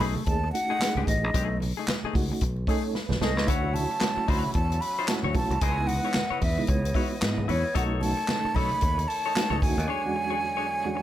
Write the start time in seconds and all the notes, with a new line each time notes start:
0.00 B1 A3 D#4 G#4, open hi-hat
0.15 muted clean electric guitar stroke, high conga
0.26 D#2 A3 C#4 D#4 G#4 A5, muted clean electric guitar stroke, kick, closed hi-hat
0.44 muted clean electric guitar stroke
0.52 A3 C#4 D#4 F#4 F#5, closed hi-hat
0.70 A3 D#4 G#4
0.79 A3 C#4 D#4 G#4, snare, clap, closed hi-hat, muted conga
0.95 C#2 A3 D#4 G#4, muted conga, high conga, low conga
1.07 A1 D#5, muted clean electric guitar stroke, kick, closed hi-hat, low conga
1.24 A#1, muted clean electric guitar stroke
1.34 B1 A3 D#4 G#4, kick, closed hi-hat, muted conga
1.50 muted clean electric guitar stroke
1.60 muted clean electric guitar stroke, open hi-hat, high conga
1.77 A3 D#4 G#4
1.88 snare, clap, closed hi-hat, muted conga, high conga
2.03 A3 D#4 G#4, muted fingered electric bass stroke, muted conga
2.13 C#2 A3 C#4 D#4 F#4, kick, open hi-hat, low conga
2.29 muted clean electric guitar stroke, high conga
2.41 B1, muted clean electric guitar stroke, kick, closed hi-hat
2.56 muted conga
2.67 A3 C#4 D#4 G#4 A4 C#5, kick, open hi-hat
2.85 muted clean electric guitar stroke
2.94 B4, muted clean electric guitar stroke, snare, muted conga
3.09 B1, snare, high conga, low conga
3.20 C2 A3 D#4 G#4 A4 D#5, snare, low conga
3.37 C#2 A3 C#4 D#4 B4, muted clean electric guitar stroke, snare
3.47 D2 F#3 A3 C#4 E4 F#4 C#5 F#5, kick, closed hi-hat, muted conga
3.64 muted conga
3.74 A3 C#4 E4 F#4 A5, open hi-hat, high conga
3.91 muted clean electric guitar stroke
4.01 A3 C#4 E4 F#4, muted clean electric guitar stroke, snare, clap, closed hi-hat, high conga
4.17 muted fingered electric bass stroke, muted clean electric guitar stroke
4.28 D2 E4 F#4 C#5 B5, kick, open hi-hat, low conga
4.46 muted clean electric guitar stroke, high conga
4.54 E2 A5, muted clean electric guitar stroke, kick, closed hi-hat
4.71 muted clean electric guitar stroke, closed hi-hat, muted conga
4.81 B5, open hi-hat
4.99 E4 F#4 C#5
5.08 A3 C#4 E4 F#4 A5, muted clean electric guitar stroke, snare, clap, closed hi-hat, muted conga
5.23 D2 E4 F#4 C#5, muted conga, high conga, low conga
5.34 B1 A3 C#4 E4 F#4 A5, muted clean electric guitar stroke, kick, open hi-hat, low conga
5.50 C2, muted clean electric guitar stroke, closed hi-hat
5.61 C#2 E3 B3 E4 B4 C#5 D#5 G#5, kick, closed hi-hat
5.77 G#3 B3 D#4 E4, muted clean electric guitar stroke, muted conga
5.87 F#5, muted clean electric guitar stroke, open hi-hat, high conga
6.05 E4 B4 C#5
6.14 muted clean electric guitar stroke, snare, clap, closed hi-hat, high conga
6.30 E4 B4 C#5, muted fingered electric bass stroke, muted conga
6.41 E2 E5, muted clean electric guitar stroke, kick, open hi-hat, low conga
6.57 G#3 B3 D#4 E4, muted clean electric guitar stroke, high conga
6.67 C#2 C#5, muted clean electric guitar stroke, kick, closed hi-hat, muted conga
6.84 closed hi-hat, muted conga
6.94 G#3 B3 D#4 E4 F#4 B4 C#5, kick, open hi-hat
7.11 muted clean electric guitar stroke
7.21 G#2 G#3 B3 D#4 E4, muted clean electric guitar stroke, snare, clap, closed hi-hat
7.38 muted conga, high conga, low conga
7.48 E2 E4 B4 C#5, open hi-hat, low conga
7.65 muted clean electric guitar stroke
7.75 B1 D#3 A3 C#4 D#4 F#4 A4 C#5 F#5, kick, closed hi-hat
8.01 A3 C#4 D#4 F#4 A5, open hi-hat, high conga
8.17 muted clean electric guitar stroke
8.28 A3 C#4 D#4 A4, muted clean electric guitar stroke, snare, clap, closed hi-hat, muted conga, high conga
8.44 muted fingered electric bass stroke, muted clean electric guitar stroke, muted conga
8.54 B1 D#4 A4 C#5 B5, kick, open hi-hat, low conga
8.71 muted clean electric guitar stroke, high conga
8.81 D#2, muted clean electric guitar stroke, kick, closed hi-hat
8.97 muted clean electric guitar stroke, closed hi-hat, muted conga
9.08 A5, open hi-hat
9.26 D#4 A4 C#5
9.35 A3 C#4 D#4 F#4, muted clean electric guitar stroke, snare, clap, closed hi-hat, muted conga
9.50 C#2 D#4 A4 C#5, muted conga, high conga, low conga
9.62 D2 A3 C#4 D#4 F#4 G#5, kick, open hi-hat, low conga
9.78 D#2, muted clean electric guitar stroke, closed hi-hat
9.88 E2 D3 F#3 G#3 D4 G#4 C#5
10.04 E2 G#3 C#4 D4 F#4, muted clean electric guitar stroke
10.15 muted clean electric guitar stroke
10.30 D4 G#4 C#5
10.41 muted clean electric guitar stroke
10.57 D4 G#4 C#5
10.68 muted clean electric guitar stroke
10.84 E2 G#3 C#4 D4 F#4, muted clean electric guitar stroke
10.95 muted clean electric guitar stroke